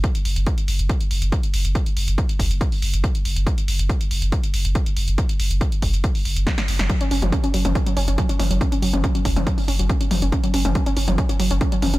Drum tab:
HH |xxoxxxoxxxoxxxox|xxoxxxoxxooxxxox|xxoxxxoxxxoxxxox|xxoxxxoxxooxxxox|
SD |----------------|----------------|----------------|------------oo-o|
T2 |----------------|----------------|----------------|----------------|
BD |o---o---o---o---|o---o-o-o---o---|o---o---o---o---|o---o-o-o---o---|

HH |xxoxxxoxxxoxxxox|xxoxxxoxxooxxxox|xxoxxxoxxxoxxxox|
SD |----------------|----------------|----------------|
T2 |---o---o------o-|---o---o------o-|---o---o------o-|
BD |o---o---o---o---|o---o-o-o---o---|o---o---o---o---|